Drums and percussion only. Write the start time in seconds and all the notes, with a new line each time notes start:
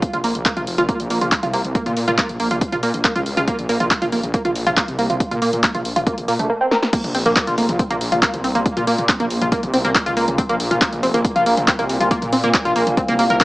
0.02 kick, closed hi-hat
0.13 closed hi-hat, mid tom
0.24 open hi-hat
0.35 closed hi-hat, mid tom
0.45 kick, clap, closed hi-hat
0.57 closed hi-hat, mid tom
0.67 open hi-hat
0.78 closed hi-hat, mid tom
0.89 kick, closed hi-hat
1.00 closed hi-hat, mid tom
1.10 open hi-hat
1.21 closed hi-hat, mid tom
1.32 kick, clap, closed hi-hat
1.43 closed hi-hat, mid tom
1.53 open hi-hat
1.65 closed hi-hat, mid tom
1.75 kick, closed hi-hat
1.86 closed hi-hat, mid tom
1.97 open hi-hat
2.08 closed hi-hat, mid tom
2.18 kick, clap, closed hi-hat
2.29 closed hi-hat, mid tom
2.40 open hi-hat
2.51 closed hi-hat, mid tom
2.61 kick, closed hi-hat
2.72 closed hi-hat, mid tom
2.83 open hi-hat
2.94 closed hi-hat, mid tom
3.04 kick, clap, closed hi-hat
3.16 closed hi-hat, mid tom
3.26 open hi-hat
3.37 closed hi-hat, mid tom
3.48 kick, closed hi-hat
3.59 closed hi-hat, mid tom
3.69 open hi-hat
3.80 closed hi-hat, mid tom
3.91 kick, clap, closed hi-hat
4.02 closed hi-hat, mid tom
4.12 open hi-hat
4.23 closed hi-hat, mid tom
4.34 kick, closed hi-hat
4.45 closed hi-hat, mid tom
4.55 open hi-hat
4.67 closed hi-hat, mid tom
4.77 kick, clap, closed hi-hat
4.88 closed hi-hat, mid tom
4.99 open hi-hat
5.10 closed hi-hat, mid tom
5.20 kick, closed hi-hat
5.31 closed hi-hat, mid tom
5.42 open hi-hat
5.53 closed hi-hat, mid tom
5.63 kick, clap, closed hi-hat
5.75 closed hi-hat, mid tom
5.85 open hi-hat
5.96 closed hi-hat, mid tom
6.07 kick, closed hi-hat
6.18 closed hi-hat, mid tom
6.28 open hi-hat
6.39 closed hi-hat, mid tom
6.71 snare
6.83 snare
6.93 kick, closed hi-hat, crash
7.04 closed hi-hat, mid tom
7.15 open hi-hat
7.26 closed hi-hat, mid tom
7.36 kick, clap, closed hi-hat
7.47 closed hi-hat, mid tom
7.58 open hi-hat
7.69 closed hi-hat, mid tom
7.79 kick, closed hi-hat
7.91 closed hi-hat, mid tom
8.01 open hi-hat
8.12 closed hi-hat, mid tom
8.22 kick, clap, closed hi-hat
8.34 closed hi-hat, mid tom
8.44 open hi-hat
8.55 closed hi-hat, mid tom
8.66 kick, closed hi-hat
8.77 closed hi-hat, mid tom
8.87 open hi-hat
8.98 closed hi-hat, mid tom
9.09 kick, clap, closed hi-hat
9.20 closed hi-hat, mid tom
9.30 open hi-hat
9.42 closed hi-hat, mid tom
9.52 kick, closed hi-hat
9.63 closed hi-hat, mid tom
9.74 open hi-hat
9.85 closed hi-hat, mid tom
9.95 kick, clap, closed hi-hat
10.06 closed hi-hat, mid tom
10.17 open hi-hat
10.28 closed hi-hat, mid tom
10.38 kick, closed hi-hat
10.49 closed hi-hat, mid tom
10.60 open hi-hat
10.71 closed hi-hat, mid tom
10.81 kick, clap, closed hi-hat
10.93 closed hi-hat, mid tom
11.03 open hi-hat
11.14 closed hi-hat, mid tom
11.25 kick, closed hi-hat
11.36 closed hi-hat, mid tom
11.46 open hi-hat
11.57 closed hi-hat, mid tom
11.68 kick, clap, closed hi-hat
11.79 closed hi-hat, mid tom
11.89 open hi-hat
12.01 closed hi-hat, mid tom
12.11 kick, closed hi-hat
12.22 closed hi-hat, mid tom
12.33 open hi-hat
12.44 closed hi-hat, mid tom
12.54 kick, clap, closed hi-hat
12.65 closed hi-hat, mid tom
12.76 open hi-hat
12.87 closed hi-hat, mid tom
12.97 kick, closed hi-hat
13.08 closed hi-hat, mid tom
13.19 open hi-hat
13.30 closed hi-hat, mid tom
13.40 kick, clap, closed hi-hat